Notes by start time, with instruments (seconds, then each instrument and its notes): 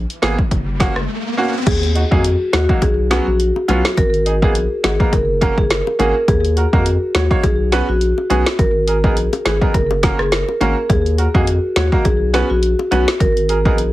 Already playing: riser
0.10 closed hi-hat
0.22 sub bass G#1, grand piano A#3 B3 G#4, snare, closed hi-hat
0.39 kick
0.51 sub bass F#1, kick, closed hi-hat
0.80 grand piano A#3 C#4 F#4, kick, snare, closed hi-hat
0.96 sub bass F#1, cross-stick
1.37 grand piano A#3 C#4 F#4
1.67 sub bass D#2, marimba G#4, kick, closed hi-hat, crash, high bongo
1.83 closed hi-hat
1.95 grand piano D#4 F#4, closed hi-hat
2.11 sub bass F2, grand piano F#3 A#3 D#4 G#4, marimba F#4, kick
2.24 closed hi-hat
2.53 sub bass D#2, grand piano D#4 F#4, marimba F#4, snare, closed hi-hat, low bongo
2.69 grand piano F#3 A#3 D#4 F#4, kick
2.82 sub bass B1, marimba G#4, kick, closed hi-hat, high bongo
3.11 grand piano F#3 B3 C#4 F#4, snare, closed hi-hat, high bongo
3.27 sub bass A#1, marimba F#4
3.40 closed hi-hat
3.56 high bongo
3.68 sub bass B1, grand piano F#3 B3 C#4 F4, marimba F#4, closed hi-hat, low bongo
3.85 snare
3.97 sub bass G#1, marimba A#4, kick, closed hi-hat, high bongo
4.14 closed hi-hat
4.26 grand piano D#4 G#4, closed hi-hat
4.42 sub bass A#1, grand piano A#3 B3 D#4 G#4, marimba G#4, kick
4.55 closed hi-hat
4.83 sub bass G#1, grand piano D#4 F#4, marimba G#4, snare, closed hi-hat, low bongo
4.99 grand piano A#3 B3 D#4 A#4, kick
5.13 sub bass F#1, marimba A#4, kick, closed hi-hat, high bongo
5.41 grand piano A#3 C#4 F#4 A#4, kick, closed hi-hat, high bongo
5.58 sub bass F#1, marimba G#4, kick
5.70 marimba A#4, snare, closed hi-hat
5.87 high bongo
5.99 sub bass G#1, grand piano A#3 C#4 F#4 G#4, marimba A#4, closed hi-hat, low bongo
6.28 sub bass D#2, marimba G#4, kick, closed hi-hat, high bongo
6.45 closed hi-hat
6.57 grand piano F#4 A#4, closed hi-hat
6.73 sub bass F2, grand piano A#3 D#4 F#4 A#4, marimba F#4, kick
6.86 closed hi-hat
7.14 sub bass D#2, grand piano F#4 C#5, marimba F#4, snare, closed hi-hat, low bongo
7.30 grand piano A#3 D#4 F#4 C#5, kick
7.43 sub bass B1, marimba G#4, kick, closed hi-hat, high bongo
7.72 grand piano B3 C#4 F#4 B4, snare, closed hi-hat, high bongo
7.89 sub bass A#1, marimba F#4
8.01 closed hi-hat
8.18 high bongo
8.30 sub bass B1, grand piano B3 C#4 F#4 G#4, marimba F#4, closed hi-hat, low bongo
8.46 snare
8.59 sub bass G#1, marimba A#4, kick, closed hi-hat, high bongo
8.87 grand piano G#4 A#4, closed hi-hat
9.04 sub bass A#1, grand piano B3 D#4 G#4 A#4, marimba G#4, kick
9.17 closed hi-hat
9.33 closed hi-hat, high bongo
9.45 sub bass G#1, grand piano G#4 B4, marimba G#4, snare, closed hi-hat, low bongo
9.61 grand piano B3 D#4 G#4 A#4, kick
9.74 sub bass F#1, marimba A#4, kick, closed hi-hat, high bongo
9.91 high bongo
10.03 grand piano A#3 C#4 F#4 A#4, kick, snare, closed hi-hat, high bongo
10.19 sub bass F#1, marimba G#4, cross-stick
10.32 marimba A#4, snare, closed hi-hat
10.49 high bongo
10.61 sub bass G#1, grand piano A#3 C#4 F#4 A#4, marimba A#4, closed hi-hat, low bongo
10.90 sub bass D#2, marimba G#4, kick, closed hi-hat, high bongo
11.06 closed hi-hat
11.18 grand piano F#4 A#4, closed hi-hat
11.34 sub bass F2, grand piano A#3 D#4 F#4 G#4, marimba F#4, kick
11.47 closed hi-hat
11.76 sub bass D#2, grand piano F#4 C#5, marimba F#4, snare, closed hi-hat, low bongo
11.92 grand piano A#3 D#4 F#4 A#4, kick
12.05 sub bass B1, marimba G#4, kick, closed hi-hat, high bongo
12.34 grand piano B3 C#4 F#4 B4, snare, closed hi-hat, high bongo
12.50 sub bass A#1, marimba F#4
12.63 closed hi-hat
12.79 high bongo
12.91 sub bass B1, grand piano B3 C#4 F#4 B4, marimba F#4, closed hi-hat, low bongo
13.08 snare
13.20 sub bass G#1, marimba A#4, kick, closed hi-hat, high bongo
13.37 closed hi-hat
13.49 grand piano G#4 A#4, closed hi-hat
13.65 sub bass A#1, grand piano B3 D#4 G#4 A#4, marimba G#4, kick
13.78 closed hi-hat